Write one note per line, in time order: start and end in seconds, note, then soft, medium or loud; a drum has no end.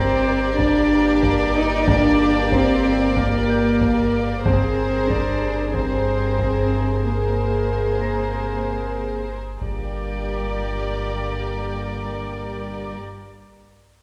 0.00 4.42 G1 medium
0.00 4.41 G2 medium
0.00 4.41 A#2 medium
0.00 4.41 A#3 medium
0.00 0.54 C4 medium
0.00 4.42 G4 medium
0.00 4.41 A#4 medium
0.00 0.60 C5 medium
0.00 4.41 D5 medium
0.00 3.52 A#5 soft
0.00 3.52 A#6 medium
0.58 1.55 D4 medium
0.58 1.56 D4 medium
0.58 1.57 D5 medium
0.58 taiko medium
1.23 taiko medium
1.55 1.87 D#4 medium
1.55 1.87 D#5 medium
1.88 2.51 D4 medium
1.88 2.51 D5 medium
1.88 taiko medium
2.52 3.16 C4 medium
2.52 3.17 C4 medium
2.52 3.18 C5 medium
2.52 taiko medium
3.16 4.45 A#3 medium
3.16 4.46 A#3 medium
3.16 4.45 A#4 medium
3.16 taiko medium
3.49 5.42 G6 soft
3.81 taiko medium
4.45 9.57 G1 medium
4.45 9.37 G2 medium
4.45 9.25 C3 medium
4.45 5.09 C4 medium
4.45 5.10 C4 medium
4.45 5.70 G#4 medium
4.45 9.25 G#4 medium
4.45 5.70 A#4 soft
4.45 5.70 C5 medium
4.45 5.09 C5 medium
4.45 taiko medium
5.09 5.74 D4 medium
5.09 5.75 D4 medium
5.09 5.76 D5 medium
5.09 taiko medium
5.74 7.00 C4 medium
5.74 7.01 C4 medium
5.74 7.01 G#4 soft
5.74 7.01 A#4 soft
5.74 6.75 C5 medium
5.74 7.01 C5 soft
5.74 taiko medium
6.39 taiko medium
7.04 9.29 A#3 soft
7.04 9.25 A#3 soft
7.04 9.37 G#4 soft
7.04 9.25 A#4 soft
7.04 9.38 A#4 soft
7.04 9.38 C5 soft
8.00 11.90 A#5 soft
8.00 11.91 A#6 soft
9.61 12.95 G1 medium
9.61 12.96 G2 soft
9.61 12.95 A#2 soft
9.61 12.96 D3 soft
9.61 12.95 G3 soft
9.61 12.95 A#3 soft
9.61 12.95 G4 soft
9.61 12.96 G4 soft
9.61 12.95 A#4 soft
9.61 12.96 D5 soft
9.61 taiko soft